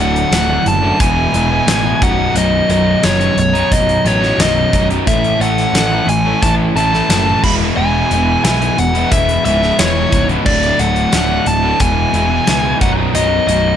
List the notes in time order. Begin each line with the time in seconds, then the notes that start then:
Already playing: D1 D2 A2 D3
0.00 F#3 A3 D4 F#5
0.16 closed hi-hat
0.31 D1 D2 A2 D3 F#3 A3 D4, snare, closed hi-hat
0.48 D3 F#3 A3 D4
0.66 F#1 A5, muted overdriven electric guitar stroke, closed hi-hat
0.82 D3 F#3 A3 D4
0.98 E1 E2 B2 E3 G#3 B3 E4 G#5, kick, closed hi-hat
1.33 E1 E3 G#3 B3 E4, closed hi-hat
1.50 E3 G#3 B3 E4
1.67 A1 E2 B2 E3 G#3 B3 E4, snare, closed hi-hat
1.84 E3 G#3 B3 E4
2.01 B0 B1 F#2 B2 F#3 D#4 F#5, kick, closed hi-hat
2.18 B2 F#3 D#4
2.35 B0 B1 F#2 B2 F#3 D#4 D#5, closed hi-hat
2.69 B0 F#2 B2 F#3 D#4 D#5, closed hi-hat
3.03 F#1 B1 F#2 B2 F#3 D#4 C#5, snare, closed hi-hat
3.19 B2 F#3 D#4, closed hi-hat
3.37 B0 C#5, muted overdriven electric guitar stroke, closed hi-hat
3.53 B2 F#3 D#4, closed hi-hat
3.71 B0 D#5, kick, closed hi-hat
3.89 closed hi-hat
4.05 A1 F#2 B2 F#3 D#4 C#5, closed hi-hat
4.21 B2 F#3 D#4, snare
4.38 B0 B1 F#2 B2 F#3 D#4 D#5, snare, closed hi-hat
4.55 B2 F#3 D#4
4.72 B0 F#2 B2 F#3 D#4, kick, closed hi-hat
4.89 B2 F#3 D#4, closed hi-hat
5.06 A1 A2 E3 A3 C#4 E4 A4 E5, kick, closed hi-hat
5.24 closed hi-hat
5.40 A1 A3 C#4 E4 A4 F#5, closed hi-hat
5.58 snare, closed hi-hat
5.73 A1 A2 E3 A3 C#4 E4 A4, snare, closed hi-hat
5.91 A3 C#4 E4 A4
6.07 A1 G#5, muted overdriven electric guitar stroke, closed hi-hat
6.25 A3 C#4 E4 A4
6.43 A1 A5, kick, closed hi-hat
6.75 A1 A3 C#4 E4 A4 A5, closed hi-hat
6.92 A3 C#4 E4 A4, snare
7.09 F#1 A2 E3 A3 C#4 E4 A4, snare, closed hi-hat
7.26 A3 C#4 E4 A4
7.43 E1 E2 B2 E3 G#3 B3 E4 B5, kick, crash
7.60 E3 G#3 B3 E4
7.77 E1 E2 B2 E3 G#3 B3 E4 G#5
8.11 E1 E3 G#3 B3 E4, closed hi-hat
8.43 B1 E2 B2 E3 G#3 B3 E4 G#5, snare, closed hi-hat
8.61 E3 G#3 B3 E4, closed hi-hat
8.78 E1 F#5, muted overdriven electric guitar stroke, closed hi-hat
8.94 E3 G#3 B3 E4, closed hi-hat
9.12 E1 E5, kick, closed hi-hat
9.29 closed hi-hat
9.45 C#1 E3 G#3 B3 E4 E5, closed hi-hat
9.62 E3 G#3 B3 E4, snare
9.78 E1 E2 B2 E3 G#3 B3 E4 C#5, snare, closed hi-hat
9.95 E3 G#3 B3 E4
10.12 C#1 E3 G#3 B3 E4, kick, closed hi-hat
10.28 E3 G#3 B3 E4, closed hi-hat
10.45 D1 D2 A2 D3 F#3 A3 D4 D5, kick, crash
10.63 closed hi-hat
10.78 D1 D3 F#3 A3 D4 F#5, closed hi-hat
10.96 closed hi-hat
11.12 D1 D2 A2 D3 F#3 A3 D4, snare, closed hi-hat
11.29 D3 F#3 A3 D4
11.46 D1 A5, muted overdriven electric guitar stroke, closed hi-hat
11.63 D3 F#3 A3 D4
11.79 E1 E2 B2 E3 G#3 B3 E4 G#5, kick, closed hi-hat
12.12 E1 E3 G#3 B3 E4, closed hi-hat
12.29 E3 G#3 B3 E4
12.46 C#2 E2 B2 E3 G#3 B3 E4, snare, closed hi-hat
12.64 E3 G#3 B3 E4
12.80 B0 B1 F#2 B2 F#3 D#4 F#5, kick, closed hi-hat
12.97 B2 F#3 D#4
13.13 B0 B1 F#2 B2 F#3 D#4 D#5, closed hi-hat
13.47 B0 F#2 B2 F#3 D#4 D#5, closed hi-hat